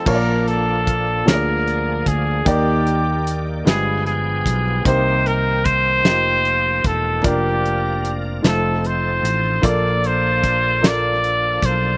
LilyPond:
<<
  \new Staff \with { instrumentName = "Trumpet" } { \time 6/8 \key bes \major \tempo 4. = 50 bes'8 a'4 bes'4 aes'8 | g'4 r8 aes'8 aes'4 | c''8 bes'8 c''4. a'8 | g'4 r8 a'8 c''4 |
d''8 c''4 d''4 c''8 | }
  \new Staff \with { instrumentName = "Grand piano" } { \time 6/8 \key bes \major <bes f' des'' d'' a''>4 r8 <bes f' aes' des'' d''>4 r8 | <bes ees' g' d''>4 r8 <g aes f' b'>4 r8 | <bes ees' g' c''>4 r8 <bes f' g' ees''>4 r8 | <bes d' f' d''>4 r8 <aes a ees' f' c''>4 r8 |
<bes f' a' d''>4 r8 <bes f' a' d''>4 r8 | }
  \new Staff \with { instrumentName = "Grand piano" } { \clef bass \time 6/8 \key bes \major bes,4. d4. | ees4. g,4. | c4. r4. | r2. |
bes,4. r4. | }
  \new Staff \with { instrumentName = "Tonewheel organ" } { \time 6/8 \key bes \major <f bes d' f' aes'>4. <f bes d' aes'>4. | <ees bes ges' g' d''>4. <f b aes' g''>4. | <ees bes c' g'>4. <f bes ees' ges' g'>4. | <f bes d' bes'>4. <f c' ees' a'>4. |
<f bes d' a'>2. | }
  \new Staff \with { instrumentName = "Fingered electric bass" } { \clef bass \time 6/8 \key bes \major bes,,4. d,4 d,8 | ees,4. g,,4 b,,8 | c,4. f,,4 e,,8 | f,,4. f,,4 a,,8 |
bes,,2~ bes,,8 ces,8 | }
  \new DrumStaff \with { instrumentName = "Drums" } \drummode { \time 6/8 <cymc bd>8 hh8 <hh bd>8 <hh sn>8 hh8 <hh bd>8 | <hh bd>8 hh8 hh8 <hh sn>8 hh8 <hh bd>8 | <hh bd>8 hh8 <hh bd>8 <hh sn>8 hh8 <hh bd>8 | <hh bd>8 hh8 hh8 <hh sn>8 hh8 hh8 |
<hh bd>8 hh8 <hh bd>8 <hh sn>8 hh8 <hh bd>8 | }
>>